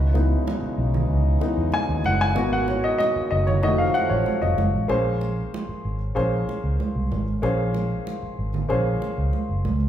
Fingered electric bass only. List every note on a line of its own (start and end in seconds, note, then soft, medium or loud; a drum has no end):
0.00 0.34 C#2 loud
0.62 muted fingered electric bass stroke soft
0.78 1.04 B1 medium
1.10 1.35 C#2 medium
1.57 1.70 E2 medium
1.89 2.02 D#2 medium
2.05 2.37 F#1 medium
2.37 2.87 G#1 loud
3.16 muted fingered electric bass stroke soft
3.32 3.63 F#1 medium
3.63 3.88 F1 medium
4.11 4.23 A1 medium
4.43 4.55 F1 medium
4.58 4.71 F#1 medium
4.74 4.87 A1 loud
4.90 5.40 A#1 loud
5.69 muted fingered electric bass stroke soft
5.85 6.10 G#1 medium
6.16 6.42 A#1 medium
6.64 6.76 C#2 medium
6.96 7.08 C2 medium
7.11 7.36 G#1 medium
7.43 7.93 A#1 medium
8.23 muted fingered electric bass stroke soft
8.39 8.64 G#1 medium
8.70 8.95 A#1 medium
9.18 9.30 C#2 medium
9.49 9.66 F#1 medium
9.65 9.89 C#2 medium